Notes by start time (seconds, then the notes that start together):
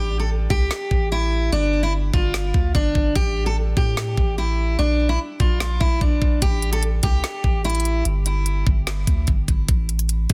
Already playing: A1 G4
0.19 A4
0.50 C2 G4, kick
0.71 snare
0.91 A1, kick
1.12 E4
1.52 G1 D4
1.83 E4
2.14 G1 F4, kick
2.34 snare
2.54 D2, kick
2.75 G1 D4, kick
2.95 G1, kick
3.16 A1 G4, kick
3.46 A4
3.77 A2 G4, kick
3.97 snare
4.17 A1, kick
4.38 E4
4.79 A#1 D4
5.09 E4
5.40 A#1 F4, kick
5.60 F4, snare
5.80 A#1 E4, kick
6.01 A#1 D4, kick
6.22 A#1, kick
6.42 A1 G4, kick, closed hi-hat
6.62 closed hi-hat
6.72 A4, closed hi-hat
6.83 closed hi-hat
7.03 C2 G4, kick, closed hi-hat
7.24 snare, closed hi-hat
7.44 A1, kick
7.65 E4, closed hi-hat
7.70 closed hi-hat
7.75 closed hi-hat
7.80 closed hi-hat
7.85 closed hi-hat
8.05 G1, closed hi-hat
8.26 closed hi-hat
8.46 closed hi-hat
8.67 G1, kick
8.87 snare, closed hi-hat
9.07 D2, kick, closed hi-hat
9.27 G1, kick, closed hi-hat
9.48 G1, kick, closed hi-hat
9.68 A1, kick, closed hi-hat
9.89 closed hi-hat
9.99 closed hi-hat
10.09 closed hi-hat
10.30 A2, kick, closed hi-hat